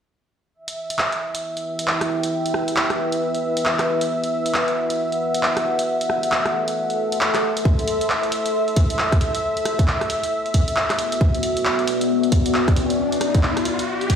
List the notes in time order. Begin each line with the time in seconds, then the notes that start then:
0.54 E4 E5
0.68 closed hi-hat
0.90 closed hi-hat
0.97 B4, clap
1.12 G5, closed hi-hat
1.35 closed hi-hat
1.57 closed hi-hat
1.79 closed hi-hat
1.88 clap
2.01 cross-stick, closed hi-hat
2.23 closed hi-hat
2.46 closed hi-hat
2.54 cross-stick
2.68 closed hi-hat
2.76 clap
2.90 cross-stick, closed hi-hat
3.12 closed hi-hat
3.35 closed hi-hat
3.57 closed hi-hat
3.65 clap
3.78 F#5, cross-stick, clap, closed hi-hat
4.01 closed hi-hat
4.24 closed hi-hat
4.46 closed hi-hat
4.54 clap
4.68 closed hi-hat
4.90 closed hi-hat
5.12 closed hi-hat
5.34 closed hi-hat
5.43 clap
5.57 cross-stick, closed hi-hat
5.79 closed hi-hat
5.87 A4
6.01 closed hi-hat
6.10 cross-stick
6.23 closed hi-hat
6.32 clap
6.40 E5
6.46 cross-stick, closed hi-hat
6.68 C6, closed hi-hat
6.90 closed hi-hat
7.12 closed hi-hat
7.21 clap
7.35 cross-stick, clap, closed hi-hat
7.57 closed hi-hat
7.65 E5, kick
7.79 closed hi-hat
7.88 open hi-hat
8.01 closed hi-hat
8.10 clap
8.23 closed hi-hat
8.32 open hi-hat
8.46 closed hi-hat
8.68 closed hi-hat
8.76 kick, open hi-hat
8.90 closed hi-hat
8.99 clap
9.12 kick, cross-stick, closed hi-hat
9.21 open hi-hat
9.35 closed hi-hat
9.57 closed hi-hat
9.65 cross-stick, open hi-hat
9.79 kick, closed hi-hat
9.88 clap
10.01 cross-stick, closed hi-hat
10.10 open hi-hat
10.23 closed hi-hat
10.32 B3
10.46 F#4, closed hi-hat
10.54 kick, open hi-hat
10.68 closed hi-hat
10.76 clap
10.90 cross-stick, clap, closed hi-hat
10.99 open hi-hat
11.12 closed hi-hat
11.20 D5, kick, riser
11.35 closed hi-hat
11.43 open hi-hat
11.57 closed hi-hat
11.65 clap
11.79 closed hi-hat
11.88 open hi-hat
12.01 closed hi-hat
12.23 closed hi-hat
12.32 kick, open hi-hat
12.46 closed hi-hat
12.54 clap
12.68 kick, cross-stick, closed hi-hat
12.76 open hi-hat
12.90 closed hi-hat
13.12 closed hi-hat
13.21 cross-stick, open hi-hat
13.35 kick, closed hi-hat
13.43 clap
13.57 cross-stick, open hi-hat
13.65 open hi-hat
13.79 closed hi-hat
14.01 closed hi-hat
14.10 kick, open hi-hat